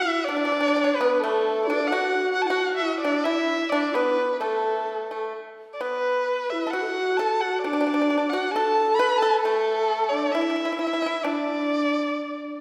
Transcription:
0.00 0.24 E4 medium
0.00 0.28 E4 medium
0.00 0.26 E5 medium
0.25 0.94 D4 medium
0.25 0.35 D4 medium
0.25 0.97 D5 loud
0.37 0.43 D4 soft
0.45 0.51 D4 medium
0.52 0.59 D4 soft
0.60 0.67 D4 medium
0.68 0.74 D4 medium
0.76 0.82 D4 medium
0.84 0.90 D4 medium
0.96 1.15 B4 medium
0.96 1.23 B4 medium
1.01 1.21 B3 medium
1.15 1.21 B4 medium
1.20 1.66 A3 medium
1.20 1.65 A4 medium
1.20 1.69 A4 medium
1.66 1.75 D4 medium
1.66 1.90 D4 medium
1.66 1.89 D5 medium
1.74 1.82 B4 medium
1.80 1.93 D4 medium
1.87 2.32 F#5 medium
1.92 2.36 F#4 medium
1.92 2.46 F#4 medium
2.33 2.43 F#5 medium
2.38 2.47 F#4 medium
2.42 2.52 E4 medium
2.42 2.48 A5 medium
2.47 3.00 F#4 medium
2.47 2.83 F#4 medium
2.47 2.77 F#5 medium
2.77 3.00 E5 medium
2.81 3.06 E4 medium
3.01 3.25 D4 medium
3.01 3.30 D4 medium
3.01 3.26 D5 medium
3.24 3.67 E4 medium
3.24 3.75 E4 medium
3.24 3.71 E5 medium
3.69 3.93 D4 medium
3.69 3.96 D5 medium
3.74 3.97 D4 medium
3.94 4.37 B3 medium
3.94 4.39 B4 medium
3.94 4.36 B4 medium
4.36 4.42 B4 medium
4.40 5.06 A3 medium
4.40 5.29 A4 medium
4.40 4.83 A4 medium
5.10 5.32 A3 soft
5.10 5.32 A4 medium
5.73 5.82 D5 medium
5.81 6.63 B3 medium
5.81 6.52 B4 medium
5.81 6.54 B4 medium
6.50 6.75 E4 medium
6.50 6.72 E5 medium
6.67 6.73 A4 medium
6.71 7.16 F#4 medium
6.71 6.84 F#4 medium
6.71 7.19 F#5 medium
6.82 6.91 A4 medium
6.89 7.22 F#4 medium
7.17 7.62 A4 medium
7.17 7.45 A4 medium
7.17 7.42 A5 medium
7.41 7.69 F#4 medium
7.41 7.62 F#5 medium
7.62 7.71 D4 medium
7.62 8.31 D5 medium
7.67 8.35 D4 medium
7.73 7.79 D4 medium
7.81 7.85 D4 medium
7.87 7.93 D4 medium
7.94 8.00 D4 medium
8.01 8.08 D4 medium
8.10 8.16 D4 medium
8.18 8.24 D4 medium
8.30 8.56 F#4 medium
8.30 8.54 F#4 medium
8.30 8.53 F#5 medium
8.51 9.01 A4 medium
8.51 8.97 A5 medium
8.56 8.97 A4 medium
8.96 9.22 B4 medium
8.96 9.20 B4 medium
8.96 9.20 B5 loud
9.18 9.42 A4 medium
9.18 9.40 A5 medium
9.22 9.43 A4 medium
9.40 10.10 A4 loud
9.40 9.81 A4 medium
9.45 10.31 A3 medium
10.08 10.32 D4 medium
10.08 10.33 D5 medium
10.32 10.76 E4 medium
10.32 10.40 E4 medium
10.32 10.79 E5 medium
10.41 10.48 E4 soft
10.50 10.55 E4 medium
10.56 10.63 E4 soft
10.65 10.71 E4 soft
10.72 10.78 E4 soft
10.79 10.86 E4 soft
10.79 11.27 E4 medium
10.79 11.25 E5 medium
10.87 10.92 E4 soft
10.93 11.00 E4 medium
11.02 11.05 E4 soft
11.06 11.14 E4 medium
11.23 12.60 D4 medium
11.23 12.61 D4 medium
11.23 12.61 D5 medium

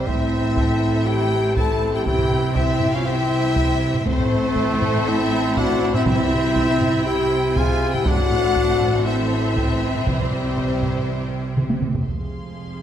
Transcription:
0.00 2.03 C4 medium
0.00 2.03 C5 medium
0.00 2.04 E5 medium
0.06 2.07 A1 medium
0.06 2.07 A2 medium
0.06 4.03 E3 soft
0.06 4.03 C4 medium
0.06 1.08 C4 medium
0.06 1.05 E4 medium
0.06 2.07 A4 medium
0.06 1.04 E5 medium
0.06 1.07 E5 medium
0.06 taiko medium
0.57 taiko medium
1.05 1.56 E4 medium
1.05 1.57 G4 medium
1.05 1.56 G5 medium
1.05 1.57 G5 medium
1.55 1.93 E4 medium
1.55 1.94 A4 medium
1.55 1.93 A5 medium
1.55 taiko medium
1.93 2.06 E4 medium
1.93 2.04 G4 medium
1.93 2.03 G5 medium
1.93 2.04 G5 medium
2.04 4.03 C2 medium
2.04 4.03 C3 medium
2.04 8.03 C4 medium
2.04 2.58 E4 medium
2.04 2.42 G4 medium
2.04 4.07 G4 medium
2.04 8.03 C5 medium
2.04 2.55 G5 medium
2.04 4.07 G5 medium
2.04 taiko medium
2.19 taiko low-mid soft
2.54 2.93 C4 medium
2.54 2.94 E4 medium
2.54 2.92 E5 medium
2.54 2.94 E5 medium
2.54 taiko medium
2.81 taiko low-mid medium
2.92 3.06 C#4 medium
2.92 3.06 F5 medium
2.92 3.07 F5 medium
2.96 3.08 F4 medium
3.06 3.77 C4 medium
3.06 4.07 E4 loud
3.06 4.07 E5 medium
3.56 taiko medium
3.94 taiko low-mid soft
4.06 6.03 A1 medium
4.06 6.03 A2 medium
4.06 5.10 A3 medium
4.06 8.03 C4 medium
4.06 5.05 C4 medium
4.06 8.03 E4 medium
4.06 6.08 A4 loud
4.06 5.05 C5 medium
4.06 5.06 C5 medium
4.06 6.06 E5 loud
4.06 taiko medium
4.19 taiko low-mid soft
4.56 taiko medium
4.82 taiko low-mid medium
5.07 5.59 C4 medium
5.07 5.57 E4 loud
5.07 5.57 E5 medium
5.55 5.97 D4 medium
5.55 5.94 F#4 medium
5.55 5.93 F#5 medium
5.55 5.94 F#5 medium
5.55 taiko medium
5.94 6.07 C4 medium
5.94 6.06 E4 medium
5.94 6.06 E5 medium
5.94 6.05 E5 medium
5.94 taiko low-mid soft
6.06 8.03 C2 medium
6.06 6.78 C3 medium
6.06 8.03 C3 medium
6.06 7.05 C4 medium
6.06 7.05 E4 loud
6.06 7.05 E5 medium
6.06 8.07 E5 medium
6.06 7.06 E5 loud
6.06 taiko medium
6.19 taiko low-mid medium
6.56 taiko medium
6.81 taiko low-mid medium
7.06 7.59 E4 medium
7.06 7.55 G4 loud
7.06 7.56 G5 medium
7.53 7.94 G#4 loud
7.53 7.92 G#5 medium
7.53 7.94 G#5 medium
7.53 taiko medium
7.58 7.94 F4 medium
7.91 8.09 E4 medium
7.91 8.06 G4 medium
7.91 8.05 G5 medium
7.91 8.07 G5 medium
7.91 taiko low-mid soft
8.05 10.03 A1 medium
8.05 10.03 A2 medium
8.05 11.82 E3 medium
8.05 11.83 C4 medium
8.05 12.03 C4 medium
8.05 9.09 D4 medium
8.05 9.06 F#4 medium
8.05 10.07 A4 medium
8.05 12.03 C5 medium
8.05 12.07 E5 medium
8.05 9.06 F#5 medium
8.05 9.07 F#5 loud
8.05 taiko loud
8.19 taiko low-mid soft
8.56 taiko medium
8.81 taiko low-mid medium
9.05 10.07 C4 medium
9.05 9.90 E4 medium
9.05 10.04 E5 medium
9.05 10.05 E5 medium
9.56 taiko medium
9.95 taiko low-mid soft
10.06 11.83 C2 medium
10.06 11.84 C3 medium
10.06 11.54 G3 medium
10.06 11.54 C4 medium
10.06 12.07 G4 medium
10.06 11.57 C5 medium
10.06 taiko medium
10.20 taiko low-mid soft
10.58 taiko medium
10.82 taiko low-mid medium
11.57 taiko mid medium
11.70 taiko high medium
11.82 taiko mid medium
11.95 taiko low medium
12.05 12.82 F1 soft
12.05 12.82 F2 soft
12.05 12.78 F2 soft
12.05 12.82 G#3 soft
12.05 12.82 C4 soft
12.05 12.82 G#4 soft
12.05 12.82 F5 soft
12.05 12.82 C6 soft
12.05 taiko soft

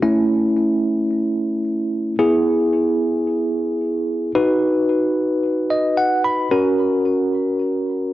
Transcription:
0.03 2.15 A3 medium
0.03 2.15 C#4 medium
0.03 2.15 E4 medium
2.19 4.31 B3 medium
2.19 4.31 E4 medium
2.19 4.31 G#4 medium
4.35 6.47 D#4 medium
4.35 6.47 F#4 medium
4.35 6.47 B4 medium
5.70 5.95 D#5 medium
5.97 6.22 F#5 medium
6.24 6.49 B5 medium
6.51 8.13 C#4 medium
6.51 8.13 F#4 medium
6.51 8.13 A#4 medium

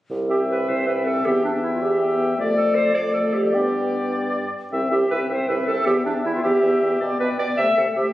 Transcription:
0.10 0.62 C2 soft
0.30 0.86 C4 soft
0.30 0.39 G4 medium
0.30 0.86 E5 soft
0.30 0.87 G5 soft
0.50 0.70 B4 medium
0.69 1.19 C2 soft
0.69 0.88 C5 medium
0.87 1.24 C4 soft
0.87 1.05 B4 soft
0.87 1.25 E5 soft
0.87 1.25 G5 soft
1.06 1.27 A4 medium
1.26 1.76 E2 soft
1.26 1.44 B3 soft
1.26 1.43 G4 medium
1.26 1.45 E5 soft
1.26 1.43 G5 soft
1.44 1.99 B3 soft
1.44 1.52 D4 medium
1.44 2.00 E5 soft
1.44 1.99 G5 soft
1.63 1.72 E4 soft
1.73 1.83 F4 soft
1.82 2.31 E2 soft
1.82 2.38 G4 medium
2.00 2.37 B3 soft
2.00 2.38 E5 soft
2.00 2.37 G5 soft
2.38 3.55 F2 soft
2.38 2.91 A3 soft
2.38 2.91 D5 medium
2.38 2.92 D5 medium
2.56 2.76 A4 medium
2.75 2.96 C5 medium
2.94 3.55 A3 soft
2.94 3.13 D5 medium
2.94 3.56 D5 soft
2.94 3.53 D5 soft
3.14 3.35 A4 medium
3.34 3.53 G4 medium
3.54 4.52 G2 soft
3.54 4.52 B3 soft
3.54 4.12 G4 medium
3.54 4.51 D5 soft
3.54 4.47 G5 soft
4.72 4.81 C2 soft
4.72 4.91 C4 soft
4.72 4.90 E5 soft
4.72 4.90 G5 soft
4.91 5.00 C2 soft
4.91 5.10 C4 soft
4.91 5.09 G4 medium
4.91 5.10 E5 soft
4.91 5.09 G5 soft
5.10 5.19 C2 soft
5.10 5.29 C4 soft
5.10 5.19 B4 medium
5.10 5.30 E5 soft
5.10 5.29 G5 soft
5.30 5.38 C2 soft
5.30 5.48 C4 soft
5.30 5.49 C5 medium
5.30 5.49 E5 soft
5.30 5.48 G5 soft
5.48 5.58 C2 soft
5.48 5.67 C4 soft
5.48 5.66 B4 medium
5.48 5.68 E5 soft
5.48 5.68 G5 soft
5.67 5.76 C2 soft
5.67 5.85 C4 soft
5.67 5.85 A4 medium
5.67 5.86 E5 soft
5.67 5.87 G5 soft
5.86 5.96 E2 medium
5.86 6.05 B3 soft
5.86 5.95 G4 medium
5.86 6.05 E5 soft
5.86 6.06 G5 medium
6.05 6.15 E2 medium
6.05 6.25 B3 soft
6.05 6.14 D4 medium
6.05 6.23 E5 soft
6.05 6.24 G5 soft
6.23 6.34 E2 soft
6.23 6.43 B3 soft
6.23 6.34 E4 medium
6.23 6.42 E5 soft
6.23 6.43 G5 soft
6.34 6.43 F4 medium
6.43 6.53 E2 soft
6.43 6.62 B3 soft
6.43 7.00 G4 medium
6.43 6.60 E5 soft
6.43 6.62 G5 medium
6.61 6.71 E2 medium
6.61 6.81 B3 soft
6.61 6.80 E5 soft
6.61 6.80 G5 soft
6.81 6.91 E2 soft
6.81 7.00 B3 soft
6.81 7.00 E5 soft
6.81 6.99 G5 soft
7.00 7.10 B2 soft
7.00 7.18 B3 medium
7.00 7.19 D5 medium
7.00 7.18 G5 medium
7.18 7.29 B2 medium
7.18 7.37 B3 soft
7.18 7.29 B4 medium
7.18 7.39 D5 soft
7.18 7.37 G5 soft
7.38 7.48 B2 soft
7.38 7.58 B3 soft
7.38 7.48 D5 medium
7.38 7.59 D5 soft
7.38 7.57 G5 soft
7.57 7.67 C3 soft
7.57 7.77 A3 soft
7.57 7.76 E5 medium
7.57 7.77 E5 soft
7.57 7.75 G5 soft
7.75 7.87 C3 soft
7.75 7.97 A3 soft
7.75 7.86 A4 soft
7.75 7.97 E5 soft
7.75 7.95 G5 soft
7.96 8.07 C3 soft
7.96 8.13 A3 soft
7.96 8.06 G4 medium
7.96 8.13 E5 soft
7.96 8.13 G5 soft

